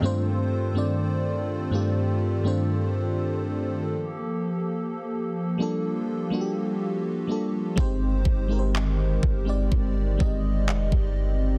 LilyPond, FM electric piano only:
\new Staff \with { instrumentName = "FM electric piano" } { \time 4/4 \key g \minor \tempo 4 = 62 << { g'16 r2. r8. | r1 | r1 | } \\ { <g, a c' d' f' c''>8 r16 <g, a c' d' f' d''>8. r16 <g, a c' d' f' g'>8 r16 <g, a c' d' f' c''>4. | r4. r16 <g bes d' f' a'>8 r16 <g bes d' f' fis' g'>8. r16 <g bes d' f' a'>8 | <aes c' ees' g' c''>8 r16 <aes c' ees' g' bes' c''>8. r16 <aes c' ees' g' d''>8 r16 <aes c' ees' g' ees''>4. | } >> }